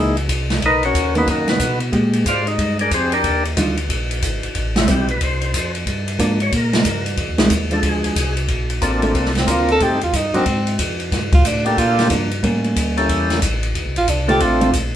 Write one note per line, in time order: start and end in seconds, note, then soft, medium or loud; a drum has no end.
0.00 0.28 C#2 medium
0.00 0.13 E3 medium
0.00 0.16 G#3 medium
0.00 0.14 A#3 medium
0.00 0.14 D#4 medium
0.00 0.17 D#4 medium
0.00 0.17 E4 medium
0.00 0.16 G#4 medium
0.17 ride soft
0.29 0.61 C2 medium
0.29 kick soft
0.29 hi-hat pedal soft
0.29 ride medium
0.50 snare soft
0.50 ride soft
0.62 0.94 B1 medium
0.62 0.84 D#5 loud
0.62 kick soft
0.62 ride medium
0.66 0.84 D#4 medium
0.66 0.84 A#4 medium
0.66 0.84 B4 medium
0.83 1.15 C#4 medium
0.83 1.15 F#4 medium
0.83 1.15 A#4 medium
0.83 1.14 C#5 medium
0.83 ride soft
0.94 1.26 D#2 medium
0.94 kick soft
0.94 hi-hat pedal medium
0.94 ride medium
1.15 1.58 D#3 medium
1.15 1.58 A#3 medium
1.15 1.29 B3 medium
1.15 1.58 C#4 medium
1.15 1.28 D#4 medium
1.15 1.29 F#4 medium
1.15 1.28 B4 loud
1.15 ride soft
1.27 1.59 F#2 medium
1.27 1.49 A#3 medium
1.27 1.48 D#4 medium
1.27 1.48 F#4 medium
1.27 1.49 A#4 medium
1.27 kick soft
1.27 ride medium
1.48 1.79 B3 medium
1.48 1.79 D#4 medium
1.48 1.79 F#4 medium
1.48 1.79 B4 medium
1.48 snare soft
1.48 ride soft
1.59 1.92 B2 medium
1.59 kick soft
1.59 hi-hat pedal medium
1.59 ride medium
1.80 ride soft
1.92 2.25 A#2 medium
1.92 2.84 G#3 medium
1.92 2.85 G4 medium
1.92 kick soft
1.92 ride medium
2.13 ride soft
2.26 2.58 G#2 medium
2.26 2.47 F4 medium
2.26 2.48 C5 medium
2.26 2.47 D5 medium
2.26 2.47 F5 loud
2.26 kick soft
2.26 hi-hat pedal medium
2.26 ride medium
2.47 2.78 D#4 medium
2.47 2.78 D#5 medium
2.47 ride soft
2.58 2.90 G2 medium
2.58 kick soft
2.58 ride medium
2.79 2.92 D4 medium
2.79 2.92 G#4 medium
2.79 2.92 A#4 medium
2.79 2.92 D5 medium
2.79 ride soft
2.91 3.23 F2 medium
2.91 3.13 C4 medium
2.91 3.13 G4 medium
2.91 3.13 G#4 medium
2.91 3.13 C5 medium
2.91 kick soft
2.91 hi-hat pedal medium
2.91 ride medium
3.12 3.44 D4 medium
3.12 3.44 G4 medium
3.12 3.44 A#4 medium
3.12 3.43 D5 loud
3.12 ride soft
3.24 3.56 D#2 medium
3.24 kick soft
3.24 ride medium
3.45 ride soft
3.57 3.89 D2 medium
3.57 3.76 D#3 medium
3.57 3.76 G3 medium
3.57 3.76 D4 medium
3.57 3.76 F4 medium
3.57 kick soft
3.57 hi-hat pedal soft
3.57 ride medium
3.77 ride soft
3.89 4.21 A#1 medium
3.89 kick soft
3.89 ride medium
4.11 ride soft
4.22 4.42 G#1 medium
4.22 kick soft
4.22 hi-hat pedal medium
4.22 ride medium
4.43 4.49 G#1 soft
4.43 ride soft
4.55 4.87 A1 medium
4.55 kick soft
4.55 ride medium
4.76 4.89 E4 loud
4.76 snare medium
4.76 ride medium
4.88 5.20 B1 medium
4.88 5.07 G3 medium
4.88 5.07 C4 medium
4.88 5.07 E4 medium
4.88 5.10 G4 medium
4.88 kick soft
4.88 hi-hat pedal medium
4.88 ride medium
5.08 5.21 B4 medium
5.08 ride soft
5.21 5.53 C2 medium
5.21 5.72 C5 medium
5.21 kick soft
5.21 ride medium
5.41 ride soft
5.54 5.86 F2 medium
5.54 kick soft
5.54 hi-hat pedal medium
5.54 ride medium
5.75 ride soft
5.86 6.18 G2 medium
5.86 kick soft
5.86 ride medium
6.08 ride medium
6.19 6.51 G#2 medium
6.19 6.38 F3 medium
6.19 6.38 A#3 medium
6.19 6.39 D4 medium
6.19 kick soft
6.19 hi-hat pedal medium
6.19 ride medium
6.40 6.53 C#5 loud
6.40 ride soft
6.52 6.84 A#2 medium
6.52 7.04 A#4 medium
6.52 kick soft
6.52 ride medium
6.73 snare medium
6.73 ride soft
6.85 7.17 G2 medium
6.85 kick soft
6.85 hi-hat pedal medium
6.85 ride medium
7.06 ride soft
7.17 7.28 F2 medium
7.17 kick soft
7.17 ride medium
7.29 7.40 D#2 medium
7.38 7.50 C2 medium
7.38 7.49 D#3 medium
7.38 7.50 G#3 medium
7.38 7.50 C4 medium
7.38 snare medium
7.38 ride medium
7.50 7.82 D#2 medium
7.50 kick soft
7.50 hi-hat pedal medium
7.50 ride medium
7.71 8.14 F3 medium
7.71 8.14 G#3 medium
7.71 8.15 D4 medium
7.71 7.84 A4 medium
7.71 ride soft
7.83 8.03 D2 medium
7.83 kick soft
7.83 ride medium
7.87 8.35 G#4 medium
8.04 8.10 D2 soft
8.04 ride medium
8.16 8.48 C2 medium
8.16 kick soft
8.16 hi-hat pedal medium
8.16 ride medium
8.37 ride soft
8.48 8.81 A#1 medium
8.48 kick soft
8.48 ride medium
8.70 ride soft
8.81 9.14 A1 medium
8.81 9.31 A#3 medium
8.81 9.32 C4 medium
8.81 9.32 D4 medium
8.81 9.32 F4 medium
8.81 9.32 A4 medium
8.81 kick soft
8.81 hi-hat pedal medium
8.81 ride medium
9.02 9.14 F3 medium
9.02 9.14 A3 medium
9.02 9.14 D4 medium
9.02 ride soft
9.14 9.47 C2 medium
9.14 kick soft
9.14 ride medium
9.25 snare soft
9.35 9.52 C4 medium
9.35 snare soft
9.35 ride soft
9.47 9.79 D2 medium
9.47 9.80 A#3 medium
9.47 9.80 C4 medium
9.47 9.80 D4 medium
9.47 9.80 F4 medium
9.47 9.70 F4 medium
9.47 9.81 A#4 medium
9.47 kick soft
9.47 hi-hat pedal medium
9.47 ride medium
9.68 9.85 A4 loud
9.68 ride soft
9.80 9.91 A2 medium
9.80 10.00 A3 medium
9.80 10.00 C4 soft
9.80 10.00 D#4 soft
9.80 10.00 G4 soft
9.80 10.03 G4 medium
9.80 10.00 A4 medium
9.80 kick soft
9.80 ride medium
9.91 10.02 G2 medium
10.01 10.13 D#2 medium
10.01 10.17 F4 medium
10.01 ride soft
10.13 10.33 G2 medium
10.13 10.35 D#4 medium
10.13 kick soft
10.13 hi-hat pedal medium
10.13 ride medium
10.34 10.41 G2 soft
10.34 10.45 F#3 medium
10.34 10.45 C4 medium
10.34 10.77 C4 medium
10.34 10.45 D4 medium
10.34 10.46 D4 medium
10.34 10.45 D#4 medium
10.34 10.45 F#4 medium
10.34 10.45 A#4 medium
10.34 ride soft
10.46 10.78 G#2 medium
10.46 kick soft
10.46 ride medium
10.67 ride soft
10.79 11.11 F2 medium
10.79 kick soft
10.79 hi-hat pedal medium
10.79 ride medium
11.00 ride soft
11.12 11.44 G2 medium
11.12 kick soft
11.12 snare soft
11.12 ride medium
11.32 11.48 F4 medium
11.32 kick medium
11.32 ride medium
11.45 11.77 A2 medium
11.45 11.67 D4 medium
11.45 kick soft
11.45 hi-hat pedal medium
11.45 ride medium
11.66 12.08 A#3 medium
11.66 12.08 D4 medium
11.66 12.08 F4 medium
11.66 11.80 G4 loud
11.66 12.09 G4 medium
11.66 12.09 A4 medium
11.66 ride soft
11.78 12.10 A#2 medium
11.78 12.11 F4 medium
11.78 kick soft
11.78 ride medium
11.99 snare soft
11.99 ride soft
12.10 12.42 G2 medium
12.10 12.29 F3 medium
12.10 12.30 A#3 medium
12.10 12.30 D4 medium
12.10 kick soft
12.10 hi-hat pedal medium
12.10 ride medium
12.31 ride soft
12.43 12.75 A2 medium
12.43 13.35 G3 medium
12.43 13.35 A#3 medium
12.43 13.35 C#4 medium
12.43 kick soft
12.43 ride medium
12.64 ride soft
12.76 13.08 D2 medium
12.76 kick soft
12.76 hi-hat pedal medium
12.76 ride medium
12.97 13.40 A#3 medium
12.97 13.40 C#4 medium
12.97 13.40 E4 medium
12.97 13.40 G4 medium
12.97 13.40 A4 medium
12.97 ride soft
13.09 13.41 E2 medium
13.09 kick soft
13.09 ride medium
13.30 snare soft
13.30 ride soft
13.42 13.74 A1 medium
13.42 kick soft
13.42 hi-hat pedal medium
13.42 ride medium
13.63 ride soft
13.75 13.86 D2 medium
13.75 kick soft
13.75 ride medium
13.86 13.97 C2 medium
13.96 14.07 A1 medium
13.96 14.11 F4 loud
13.96 ride soft
14.08 14.40 C2 medium
14.08 14.29 D4 medium
14.08 kick soft
14.08 hi-hat pedal soft
14.08 ride medium
14.28 14.39 D3 medium
14.28 14.71 A3 medium
14.28 14.39 A3 medium
14.28 14.71 C4 medium
14.28 14.40 C4 medium
14.28 14.71 D4 medium
14.28 14.71 F4 medium
14.28 14.40 F4 medium
14.28 14.43 G4 loud
14.28 14.71 A4 medium
14.28 ride soft
14.40 14.72 A1 medium
14.40 14.74 F4 medium
14.40 kick soft
14.40 ride medium
14.61 14.72 D3 medium
14.61 14.72 A3 medium
14.61 14.72 C4 medium
14.61 14.73 F4 medium
14.61 ride soft
14.73 14.96 A#1 medium
14.73 kick soft
14.73 hi-hat pedal medium
14.73 ride medium